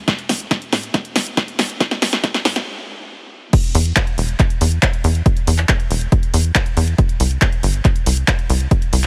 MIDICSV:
0, 0, Header, 1, 3, 480
1, 0, Start_track
1, 0, Tempo, 431655
1, 87, Time_signature, 4, 2, 24, 8
1, 10085, End_track
2, 0, Start_track
2, 0, Title_t, "Analog synth bass"
2, 0, Program_c, 0, 38
2, 326, Note_on_c, 0, 33, 97
2, 525, Note_off_c, 0, 33, 0
2, 807, Note_on_c, 0, 45, 106
2, 1005, Note_off_c, 0, 45, 0
2, 1287, Note_on_c, 0, 33, 92
2, 1485, Note_off_c, 0, 33, 0
2, 1767, Note_on_c, 0, 33, 107
2, 1965, Note_off_c, 0, 33, 0
2, 2246, Note_on_c, 0, 33, 96
2, 2445, Note_off_c, 0, 33, 0
2, 2726, Note_on_c, 0, 45, 108
2, 2924, Note_off_c, 0, 45, 0
2, 4167, Note_on_c, 0, 40, 94
2, 4365, Note_off_c, 0, 40, 0
2, 4647, Note_on_c, 0, 28, 109
2, 4845, Note_off_c, 0, 28, 0
2, 5127, Note_on_c, 0, 40, 98
2, 5325, Note_off_c, 0, 40, 0
2, 5607, Note_on_c, 0, 40, 105
2, 5805, Note_off_c, 0, 40, 0
2, 6087, Note_on_c, 0, 40, 97
2, 6285, Note_off_c, 0, 40, 0
2, 6566, Note_on_c, 0, 28, 111
2, 6765, Note_off_c, 0, 28, 0
2, 7046, Note_on_c, 0, 40, 93
2, 7245, Note_off_c, 0, 40, 0
2, 7527, Note_on_c, 0, 40, 108
2, 7725, Note_off_c, 0, 40, 0
2, 8007, Note_on_c, 0, 36, 95
2, 8205, Note_off_c, 0, 36, 0
2, 8487, Note_on_c, 0, 31, 110
2, 8685, Note_off_c, 0, 31, 0
2, 8967, Note_on_c, 0, 36, 90
2, 9165, Note_off_c, 0, 36, 0
2, 9448, Note_on_c, 0, 36, 102
2, 9645, Note_off_c, 0, 36, 0
2, 9927, Note_on_c, 0, 36, 95
2, 10085, Note_off_c, 0, 36, 0
2, 10085, End_track
3, 0, Start_track
3, 0, Title_t, "Drums"
3, 86, Note_on_c, 9, 36, 115
3, 86, Note_on_c, 9, 38, 76
3, 86, Note_on_c, 9, 42, 66
3, 197, Note_off_c, 9, 36, 0
3, 197, Note_off_c, 9, 38, 0
3, 197, Note_off_c, 9, 42, 0
3, 206, Note_on_c, 9, 42, 40
3, 317, Note_off_c, 9, 42, 0
3, 326, Note_on_c, 9, 38, 77
3, 326, Note_on_c, 9, 46, 97
3, 437, Note_off_c, 9, 38, 0
3, 437, Note_off_c, 9, 46, 0
3, 446, Note_on_c, 9, 42, 43
3, 558, Note_off_c, 9, 42, 0
3, 566, Note_on_c, 9, 36, 104
3, 567, Note_on_c, 9, 38, 78
3, 567, Note_on_c, 9, 42, 70
3, 677, Note_off_c, 9, 36, 0
3, 678, Note_off_c, 9, 38, 0
3, 678, Note_off_c, 9, 42, 0
3, 687, Note_on_c, 9, 42, 41
3, 798, Note_off_c, 9, 42, 0
3, 807, Note_on_c, 9, 38, 77
3, 807, Note_on_c, 9, 46, 83
3, 918, Note_off_c, 9, 38, 0
3, 918, Note_off_c, 9, 46, 0
3, 927, Note_on_c, 9, 42, 38
3, 1038, Note_off_c, 9, 42, 0
3, 1046, Note_on_c, 9, 36, 113
3, 1046, Note_on_c, 9, 38, 84
3, 1046, Note_on_c, 9, 42, 65
3, 1157, Note_off_c, 9, 36, 0
3, 1158, Note_off_c, 9, 38, 0
3, 1158, Note_off_c, 9, 42, 0
3, 1167, Note_on_c, 9, 42, 42
3, 1278, Note_off_c, 9, 42, 0
3, 1286, Note_on_c, 9, 38, 88
3, 1286, Note_on_c, 9, 46, 104
3, 1397, Note_off_c, 9, 38, 0
3, 1397, Note_off_c, 9, 46, 0
3, 1407, Note_on_c, 9, 42, 42
3, 1518, Note_off_c, 9, 42, 0
3, 1526, Note_on_c, 9, 36, 113
3, 1527, Note_on_c, 9, 38, 87
3, 1527, Note_on_c, 9, 42, 66
3, 1637, Note_off_c, 9, 36, 0
3, 1638, Note_off_c, 9, 38, 0
3, 1638, Note_off_c, 9, 42, 0
3, 1647, Note_on_c, 9, 42, 41
3, 1758, Note_off_c, 9, 42, 0
3, 1767, Note_on_c, 9, 38, 92
3, 1767, Note_on_c, 9, 46, 92
3, 1878, Note_off_c, 9, 38, 0
3, 1878, Note_off_c, 9, 46, 0
3, 1887, Note_on_c, 9, 42, 38
3, 1998, Note_off_c, 9, 42, 0
3, 2006, Note_on_c, 9, 36, 119
3, 2007, Note_on_c, 9, 38, 87
3, 2007, Note_on_c, 9, 42, 68
3, 2117, Note_off_c, 9, 36, 0
3, 2118, Note_off_c, 9, 38, 0
3, 2118, Note_off_c, 9, 42, 0
3, 2127, Note_on_c, 9, 38, 88
3, 2127, Note_on_c, 9, 42, 42
3, 2238, Note_off_c, 9, 38, 0
3, 2238, Note_off_c, 9, 42, 0
3, 2247, Note_on_c, 9, 38, 94
3, 2247, Note_on_c, 9, 46, 98
3, 2358, Note_off_c, 9, 38, 0
3, 2358, Note_off_c, 9, 46, 0
3, 2367, Note_on_c, 9, 38, 84
3, 2367, Note_on_c, 9, 42, 40
3, 2478, Note_off_c, 9, 38, 0
3, 2478, Note_off_c, 9, 42, 0
3, 2486, Note_on_c, 9, 36, 116
3, 2487, Note_on_c, 9, 38, 95
3, 2487, Note_on_c, 9, 42, 69
3, 2597, Note_off_c, 9, 36, 0
3, 2598, Note_off_c, 9, 38, 0
3, 2598, Note_off_c, 9, 42, 0
3, 2607, Note_on_c, 9, 38, 83
3, 2607, Note_on_c, 9, 42, 41
3, 2718, Note_off_c, 9, 38, 0
3, 2718, Note_off_c, 9, 42, 0
3, 2726, Note_on_c, 9, 38, 98
3, 2726, Note_on_c, 9, 46, 89
3, 2837, Note_off_c, 9, 38, 0
3, 2837, Note_off_c, 9, 46, 0
3, 2847, Note_on_c, 9, 38, 86
3, 2847, Note_on_c, 9, 42, 40
3, 2958, Note_off_c, 9, 38, 0
3, 2958, Note_off_c, 9, 42, 0
3, 3927, Note_on_c, 9, 36, 126
3, 3927, Note_on_c, 9, 42, 69
3, 3927, Note_on_c, 9, 49, 93
3, 4038, Note_off_c, 9, 36, 0
3, 4038, Note_off_c, 9, 42, 0
3, 4038, Note_off_c, 9, 49, 0
3, 4047, Note_on_c, 9, 42, 44
3, 4158, Note_off_c, 9, 42, 0
3, 4167, Note_on_c, 9, 46, 104
3, 4278, Note_off_c, 9, 46, 0
3, 4287, Note_on_c, 9, 42, 41
3, 4398, Note_off_c, 9, 42, 0
3, 4407, Note_on_c, 9, 36, 117
3, 4407, Note_on_c, 9, 39, 126
3, 4407, Note_on_c, 9, 42, 66
3, 4518, Note_off_c, 9, 36, 0
3, 4518, Note_off_c, 9, 39, 0
3, 4518, Note_off_c, 9, 42, 0
3, 4527, Note_on_c, 9, 42, 39
3, 4639, Note_off_c, 9, 42, 0
3, 4647, Note_on_c, 9, 46, 91
3, 4758, Note_off_c, 9, 46, 0
3, 4767, Note_on_c, 9, 42, 39
3, 4878, Note_off_c, 9, 42, 0
3, 4887, Note_on_c, 9, 36, 121
3, 4887, Note_on_c, 9, 39, 38
3, 4887, Note_on_c, 9, 42, 69
3, 4998, Note_off_c, 9, 36, 0
3, 4998, Note_off_c, 9, 39, 0
3, 4998, Note_off_c, 9, 42, 0
3, 5007, Note_on_c, 9, 42, 44
3, 5118, Note_off_c, 9, 42, 0
3, 5127, Note_on_c, 9, 46, 107
3, 5238, Note_off_c, 9, 46, 0
3, 5247, Note_on_c, 9, 42, 43
3, 5358, Note_off_c, 9, 42, 0
3, 5367, Note_on_c, 9, 36, 116
3, 5367, Note_on_c, 9, 39, 117
3, 5367, Note_on_c, 9, 42, 70
3, 5478, Note_off_c, 9, 36, 0
3, 5478, Note_off_c, 9, 39, 0
3, 5478, Note_off_c, 9, 42, 0
3, 5487, Note_on_c, 9, 42, 40
3, 5598, Note_off_c, 9, 42, 0
3, 5607, Note_on_c, 9, 46, 92
3, 5718, Note_off_c, 9, 46, 0
3, 5727, Note_on_c, 9, 42, 40
3, 5838, Note_off_c, 9, 42, 0
3, 5847, Note_on_c, 9, 36, 125
3, 5847, Note_on_c, 9, 42, 63
3, 5958, Note_off_c, 9, 36, 0
3, 5958, Note_off_c, 9, 42, 0
3, 5967, Note_on_c, 9, 42, 41
3, 6078, Note_off_c, 9, 42, 0
3, 6087, Note_on_c, 9, 46, 106
3, 6198, Note_off_c, 9, 46, 0
3, 6207, Note_on_c, 9, 39, 39
3, 6207, Note_on_c, 9, 42, 42
3, 6318, Note_off_c, 9, 39, 0
3, 6318, Note_off_c, 9, 42, 0
3, 6326, Note_on_c, 9, 36, 122
3, 6326, Note_on_c, 9, 39, 127
3, 6326, Note_on_c, 9, 42, 66
3, 6437, Note_off_c, 9, 39, 0
3, 6437, Note_off_c, 9, 42, 0
3, 6438, Note_off_c, 9, 36, 0
3, 6447, Note_on_c, 9, 42, 42
3, 6558, Note_off_c, 9, 42, 0
3, 6567, Note_on_c, 9, 46, 96
3, 6678, Note_off_c, 9, 46, 0
3, 6687, Note_on_c, 9, 42, 40
3, 6798, Note_off_c, 9, 42, 0
3, 6806, Note_on_c, 9, 36, 120
3, 6807, Note_on_c, 9, 42, 68
3, 6918, Note_off_c, 9, 36, 0
3, 6918, Note_off_c, 9, 42, 0
3, 6927, Note_on_c, 9, 42, 40
3, 7038, Note_off_c, 9, 42, 0
3, 7047, Note_on_c, 9, 46, 114
3, 7158, Note_off_c, 9, 46, 0
3, 7167, Note_on_c, 9, 42, 43
3, 7278, Note_off_c, 9, 42, 0
3, 7287, Note_on_c, 9, 36, 120
3, 7287, Note_on_c, 9, 39, 122
3, 7287, Note_on_c, 9, 42, 67
3, 7398, Note_off_c, 9, 36, 0
3, 7398, Note_off_c, 9, 39, 0
3, 7398, Note_off_c, 9, 42, 0
3, 7406, Note_on_c, 9, 42, 41
3, 7517, Note_off_c, 9, 42, 0
3, 7526, Note_on_c, 9, 46, 96
3, 7637, Note_off_c, 9, 46, 0
3, 7646, Note_on_c, 9, 42, 39
3, 7757, Note_off_c, 9, 42, 0
3, 7766, Note_on_c, 9, 42, 59
3, 7767, Note_on_c, 9, 36, 127
3, 7877, Note_off_c, 9, 42, 0
3, 7878, Note_off_c, 9, 36, 0
3, 7886, Note_on_c, 9, 42, 40
3, 7997, Note_off_c, 9, 42, 0
3, 8006, Note_on_c, 9, 46, 112
3, 8117, Note_off_c, 9, 46, 0
3, 8126, Note_on_c, 9, 42, 41
3, 8237, Note_off_c, 9, 42, 0
3, 8247, Note_on_c, 9, 36, 127
3, 8247, Note_on_c, 9, 39, 127
3, 8247, Note_on_c, 9, 42, 70
3, 8358, Note_off_c, 9, 36, 0
3, 8358, Note_off_c, 9, 39, 0
3, 8358, Note_off_c, 9, 42, 0
3, 8367, Note_on_c, 9, 42, 39
3, 8478, Note_off_c, 9, 42, 0
3, 8487, Note_on_c, 9, 46, 97
3, 8599, Note_off_c, 9, 46, 0
3, 8607, Note_on_c, 9, 42, 36
3, 8718, Note_off_c, 9, 42, 0
3, 8727, Note_on_c, 9, 36, 125
3, 8727, Note_on_c, 9, 39, 38
3, 8727, Note_on_c, 9, 42, 63
3, 8838, Note_off_c, 9, 36, 0
3, 8838, Note_off_c, 9, 39, 0
3, 8838, Note_off_c, 9, 42, 0
3, 8848, Note_on_c, 9, 42, 40
3, 8959, Note_off_c, 9, 42, 0
3, 8967, Note_on_c, 9, 46, 113
3, 9078, Note_off_c, 9, 46, 0
3, 9087, Note_on_c, 9, 42, 42
3, 9198, Note_off_c, 9, 42, 0
3, 9207, Note_on_c, 9, 36, 123
3, 9207, Note_on_c, 9, 39, 123
3, 9207, Note_on_c, 9, 42, 64
3, 9318, Note_off_c, 9, 36, 0
3, 9318, Note_off_c, 9, 39, 0
3, 9318, Note_off_c, 9, 42, 0
3, 9327, Note_on_c, 9, 42, 39
3, 9438, Note_off_c, 9, 42, 0
3, 9448, Note_on_c, 9, 46, 97
3, 9559, Note_off_c, 9, 46, 0
3, 9568, Note_on_c, 9, 42, 37
3, 9679, Note_off_c, 9, 42, 0
3, 9687, Note_on_c, 9, 36, 120
3, 9688, Note_on_c, 9, 42, 62
3, 9798, Note_off_c, 9, 36, 0
3, 9799, Note_off_c, 9, 42, 0
3, 9808, Note_on_c, 9, 42, 39
3, 9919, Note_off_c, 9, 42, 0
3, 9928, Note_on_c, 9, 46, 110
3, 10039, Note_off_c, 9, 46, 0
3, 10049, Note_on_c, 9, 39, 37
3, 10049, Note_on_c, 9, 42, 38
3, 10085, Note_off_c, 9, 39, 0
3, 10085, Note_off_c, 9, 42, 0
3, 10085, End_track
0, 0, End_of_file